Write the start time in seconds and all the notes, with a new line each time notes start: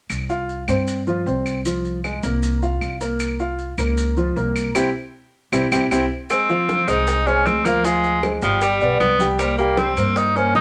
0.10 C2, claves, maracas
0.29 F4 F5, maracas
0.49 maracas
0.68 G2 C4 C5, claves, maracas
0.88 maracas
1.07 F3 F4, maracas
1.26 C2 C4 C5, maracas
1.46 claves, maracas
1.65 F3 F4, maracas
1.85 maracas
2.04 G#3 G#4, claves, maracas
2.23 C2 A#3 A#4, maracas
2.43 maracas
2.62 F4 F5, maracas
2.81 C2, claves, maracas
3.01 A#3 A#4, maracas
3.20 claves, maracas
3.39 F4 F5, maracas
3.59 maracas
3.78 C#2 A#3 A#4, claves, maracas
3.97 maracas
4.17 F3 F4, maracas
4.36 C2 A#3 A#4, maracas
4.56 claves, maracas
4.74 C2 C4 E4 G4, claves, maracas
5.52 C2 C4 E4 G4, claves, maracas
5.71 C2 C4 E4 G4, claves, maracas
5.91 C2 C4 E4 G4, claves, maracas
6.30 G#3 C4 G#4 C5, high bongo, high conga, claves, maracas
6.49 F3 F4 F5, high bongo, high conga, maracas
6.69 high bongo, high conga, maracas
6.88 C2 G#3 D#4 G#4 C5, high bongo, high conga, claves, maracas
7.07 high bongo, high conga, maracas
7.26 G#3 C#4 G#4 C5, high bongo, high conga, maracas
7.46 D2 C4, high bongo, low bongo, high conga, maracas
7.65 F3 A#3 F4 F5, high conga, claves, maracas
7.84 F3 G#3 F4 F5, high bongo, high conga, maracas
8.04 high bongo, high conga, maracas
8.23 G#3 G#4 C5, high bongo, high conga, claves, maracas
8.42 G1 F3 G3 G4 G5, high bongo, high conga, maracas
8.61 G3, high bongo, high conga, maracas
8.81 B1 B3 B4 D5, high bongo, high conga, maracas
9.00 C2 B3, high bongo, low bongo, high conga, claves, maracas
9.19 G3 G4 G5, high conga, maracas
9.38 G3 A#3 A#4 C5, high bongo, high conga, claves, maracas
9.58 G3 A#3 G4 G5, high bongo, high conga, maracas
9.77 C4, high bongo, high conga, maracas
9.97 G2 A#3 A#4 C5, high bongo, high conga, claves, maracas
10.16 D#4, high bongo, high conga, maracas
10.36 A#3 C#4 A#4 C5, high bongo, high conga, maracas
10.55 B1 D#4, high bongo, low bongo, high conga, maracas